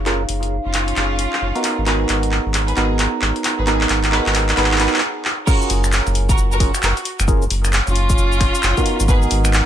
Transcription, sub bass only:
Already playing: F#1
0.29 F#1
0.65 F#1
0.96 F#1
1.41 F#1
1.78 G#1
2.09 G#1
2.46 G#1
2.77 G#1
3.22 G#1
3.58 G#1
3.89 G#1
4.26 G#1
4.57 G#1
5.70 F#1
6.07 F#1
6.38 F#1
6.83 F#1
7.19 F#1
7.50 F#1
7.87 F#1
8.18 F#1
8.63 F#1
9.00 G#1
9.31 G#1

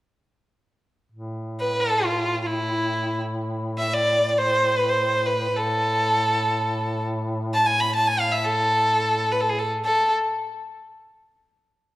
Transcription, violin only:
1.60 B4
1.80 A4
2.05 F4
2.42 F4
2.46 E4
3.78 E5
3.93 D5
4.28 D5
4.38 C5
4.78 B4
4.89 C5
5.26 B4
5.57 A4
7.54 A5
7.66 G#5
7.80 B5
7.96 A5
8.08 G#5
8.20 F5
8.32 E5
8.44 A4
9.32 B4
9.40 A4
9.49 G#4
9.59 A4
9.85 A4

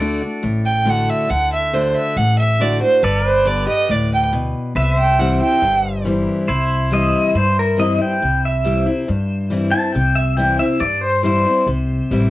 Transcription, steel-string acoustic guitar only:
0.00 D3 A3 D4 F#4
0.21 D4 F#4
0.43 A2
0.85 D3 A3 D4 F#4
1.29 D3
1.73 D3 A3 D4 F#4
2.18 A2
2.60 D3 A3 D4 F#4
2.81 D4 F#4
3.03 G2
3.45 D3 G3 B3 G4
3.67 B3 G4
3.89 A2
4.33 B2
4.76 C3
5.19 E3 G3 C4 E4
5.41 C4 E4
5.62 G2
6.05 E3 G3 C4 E4
6.48 C3
6.91 E3 G3 C4 E4
7.35 G2
7.77 E3 G3 C4 E4
7.98 C4 E4
8.22 C3
8.64 E3 G3 C4 E4
8.86 C4 E4
9.08 G2
9.50 E3 G3 C4 E4
9.73 C4 E4
9.95 C3
10.37 E3 G3 C4 E4
10.59 C4 E4
10.80 G2
11.23 E3 G3 C4 E4
11.46 C4 E4
11.67 C3
12.11 E3 G3 C4 E4

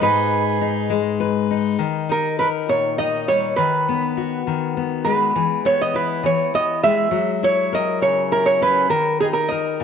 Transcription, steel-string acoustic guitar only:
0.01 G#2 D#4
0.61 D#4
0.90 G#3
1.20 B4
1.51 D#4
1.79 D#3
2.09 D#4
2.40 A#4
2.69 A#2
2.99 D#4
3.28 G3
3.58 D#3
3.89 B3
4.17 F#4
4.47 D#3
4.77 B3
5.05 G#3
5.35 E3
5.65 B3
5.94 E4
6.23 E3
6.54 B3
6.83 G#3
7.11 F#3
7.43 E4
7.73 A#4
8.01 C#3
8.32 E4
8.61 C#4
8.89 D#3
9.22 D#4
9.51 A#4
9.80 A#2

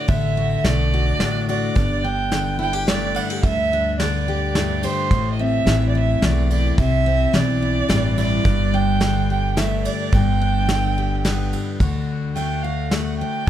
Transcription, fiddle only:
Already playing: D5
0.09 E5
0.64 D5
1.49 D5
2.04 G5
2.61 G5
2.89 D5
3.16 F#5
3.44 E5
3.99 D5
4.84 C5
5.32 D#5
5.40 E5
5.89 D5
5.97 E5
6.24 D5
6.52 D5
6.80 E5
7.35 D5
8.19 D5
8.74 G5
9.30 G5
9.58 E5
9.85 D5
10.14 G5
12.35 G5
12.63 F5
12.92 F#5
13.19 G5
13.46 A5

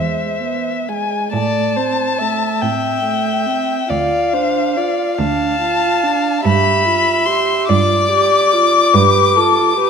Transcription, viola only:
Already playing: G#3
0.42 B3
0.88 G#3
1.32 A3
1.76 C4
2.20 A3
2.63 C4
3.05 A3
3.47 C4
3.89 F4
4.33 D4
4.76 F4
5.19 D4
5.61 F4
6.03 D4
6.45 G4
6.85 F4
7.26 G4
7.68 F4
8.11 G4
8.53 F4
8.94 G4
9.36 F4
9.77 G4

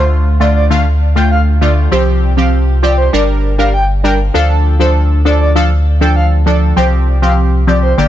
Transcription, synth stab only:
Already playing: D3 A3 F4
0.40 D3 A3 F4
0.70 D3 A3 F4
1.16 D3 A3 F4
1.61 D3 A3 F4
1.91 F3 C4 G4
2.37 F3 C4 G4
2.83 F3 C4 G4
3.13 G3 D4 A#4
3.58 G3 D4 A#4
4.04 G3 D4 A#4
4.34 F3 D4 A4
4.79 F3 D4 A4
5.25 F3 D4 A4
5.55 F3 D4 A4
6.01 F3 D4 A4
6.46 F3 D4 A4
6.76 F3 C4 G4
7.22 F3 C4 G4
7.67 F3 C4 G4
7.98 D3 A#3 G4

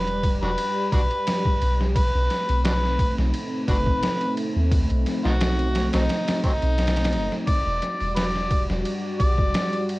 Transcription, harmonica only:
Already playing: B4
0.42 D4 F#4 B4
0.93 D4 F#4 B4
1.96 B4
2.65 D4 F#4 B4
3.69 D4 F#4 B4
5.25 B3 D#4 F#4
5.94 F#3 C4 D#4
6.45 F#3 C4 D#4
7.48 D5
8.16 B4 D5
9.20 D5

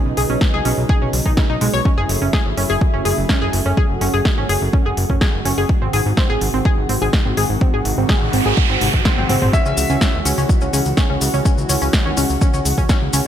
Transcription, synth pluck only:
0.17 G#4
0.30 C#4
0.54 G#4
0.65 C#4
0.89 G#4
1.02 C#4
1.26 D#4
1.37 C#3
1.50 D#4
1.61 G#3
1.74 C#5
1.85 C#4
1.98 G#4
2.22 C#4
2.33 G#4
2.57 C#4
2.70 G#4
2.94 C#4
3.05 G#4
3.29 C#4
3.42 G#4
3.66 C#4
3.77 G#4
4.01 C#4
4.14 G#4
4.38 C#4
4.49 G#4
4.73 C#4
4.86 G#4
5.10 C#4
5.21 G#4
5.45 C#4
5.58 G#4
5.82 C4
5.93 G#4
6.17 C4
6.30 G#4
6.54 C4
6.65 G#4
6.89 C4
7.02 G#4
7.26 C4
7.37 G#4
7.61 C4
7.74 G#4
7.98 C4
8.09 G#4
8.33 C4
8.46 G#4
8.70 C4
8.81 C3
9.06 C4
9.18 C4
9.29 C4
9.42 C4
9.53 C#4
9.66 C#4
9.90 C#4
10.02 C#4
10.25 C#4
10.38 C#4
10.62 C#4
10.73 C#4
10.97 C#4
11.10 C#4
11.34 C#4
11.45 C#4
11.69 C#4
11.82 C#4
12.06 C#4
12.17 C#4
12.41 C#4
12.54 C#4
12.78 C#4
12.89 C#4
13.13 C#4

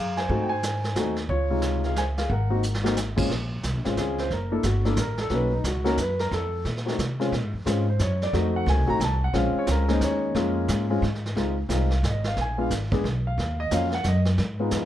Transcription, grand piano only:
Already playing: G#4 F5
0.17 C5 G#5
0.29 A3 C4 D#4 F#4
0.42 G5
0.49 C5 G#5
0.95 A3 C4 D#4 F#4
1.29 F4 C#5
1.50 C3 G#3 D#4 F4
1.86 G#4 F5
1.98 C5 G#5
2.18 G#4 F5
2.31 A#4 F#5
2.50 A#3 C4 D#4 F#4
2.84 A#3 C4 D#4 F#4
3.16 A#2 G#3 C4 C#4 F4
3.84 G#3 C4 C#4 F4
3.99 G#4
4.20 C5
4.33 A#4
4.51 A#3 D4 E4 A4
4.65 F#4
4.84 A#3 D4 E4 A4
5.00 A#4
5.21 A4
5.30 A#3 C#4 D#4 F#4 B4
5.53 D#4
5.67 F#4
5.84 A#3 C#4 D#4 F#4 A#4
6.01 B4
6.20 A#4
6.34 A4
6.86 A3 C4 D#4 F#4
7.20 G#3 C4 C#4 F4
7.65 G#3 C4 C#4 F4
7.90 C5
8.02 C#5
8.23 D5
8.33 A3 C4 D#4 F#4 D#5
8.56 F#5
8.69 G#5
8.86 A3 C4 D#4 F#4 A#5
9.04 A5
9.24 F#5
9.33 G#3 C4 C#4 F4 F5
9.59 C#5
9.71 A#4
9.88 G#3 A#3 C#4 D#4 C5
10.04 C#5
10.35 G#3 A#3 C#4 F4
10.90 G#3 C4 C#4 F4
11.35 G#3 C4 D#4 F4
11.69 G#3 C4 D#4 F4 F5
12.07 D#5
12.28 F5
12.41 G#5
12.58 G#3 B3 D4 F4 F5
12.92 G#3 B3 D4 G#4
13.27 F5
13.60 D#5
13.71 F#3 A#3 C#4 F4 F5
13.90 F5
13.95 F#5
14.08 D#5
14.59 G#3 B3 D#4 F4

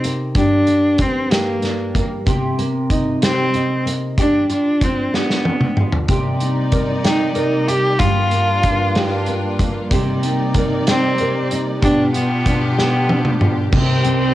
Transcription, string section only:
6.09 C3 G3 A#3 D#4 D5
8.00 G2 G3 D4 F4
9.91 C3 D#4 D5
11.83 B2 B3 D4 F4 G4
13.74 C2 C3 D#3 G3 G4

